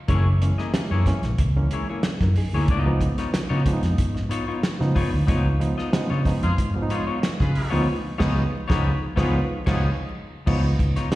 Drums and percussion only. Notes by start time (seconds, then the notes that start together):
0.08 kick, closed hi-hat
0.42 closed hi-hat
0.59 snare
0.74 snare, closed hi-hat
1.06 kick, snare, closed hi-hat
1.23 snare, closed hi-hat
1.38 kick, closed hi-hat
1.71 closed hi-hat
2.03 snare, closed hi-hat
2.21 kick, snare
2.36 open hi-hat
2.68 kick, closed hi-hat
3.01 kick, closed hi-hat
3.18 snare, closed hi-hat
3.34 snare, closed hi-hat
3.66 kick, closed hi-hat
3.83 snare, closed hi-hat
3.98 kick, closed hi-hat
4.16 snare
4.31 closed hi-hat
4.63 snare, closed hi-hat
4.81 snare
4.96 kick, open hi-hat
5.28 kick, closed hi-hat
5.61 closed hi-hat
5.79 snare
5.93 snare, closed hi-hat
6.25 kick, snare, open hi-hat
6.43 closed hi-hat
6.58 kick, closed hi-hat
6.90 closed hi-hat
7.23 snare, closed hi-hat
7.40 kick, snare
7.55 open hi-hat
8.20 kick, snare, crash
8.70 kick, snare
9.17 kick, snare
9.67 kick, snare, crash
10.47 kick, crash
10.79 kick, closed hi-hat
10.97 snare, closed hi-hat
11.12 snare, closed hi-hat